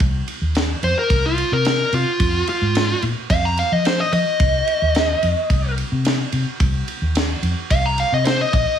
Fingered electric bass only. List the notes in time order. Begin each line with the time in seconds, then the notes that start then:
0.00 C2
0.41 D#2
0.83 F2
1.10 C2
1.52 C3
1.93 C3
2.20 F2
2.61 G#2
3.03 A#2
3.30 F2
3.72 F3
4.12 F3
4.40 C2
4.82 D#2
5.23 F2
5.50 C2
5.92 C3
6.33 C3
6.60 C2
7.02 D#2
7.42 F2
7.71 C2
8.12 C3
8.53 A#1